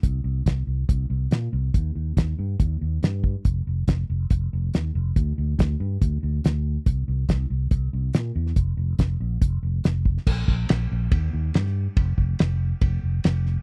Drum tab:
CC |----------------|----------------|----------------|----------------|
RD |----------------|----------------|----------------|----------------|
HH |x---x---x---x---|x---x---x---x---|x---x---x---x---|x---x---x---x---|
SD |----o-------o---|----o-------o---|----o-------o---|----o-------o---|
BD |o---o---o-------|o---o---o-----o-|o---o---o-------|o---o---o-------|

CC |----------------|----------------|x---------------|----------------|
RD |----------------|----------------|----b---b---b---|b---b---b---b---|
HH |x---x---x---x---|x---x---x---x---|----------------|----------------|
SD |----o-------o--o|----o-------o--o|----o-------oo--|----o-------o-o-|
BD |o---o---o-------|o---o---o-----o-|o-o-----o-------|o-o-----o-------|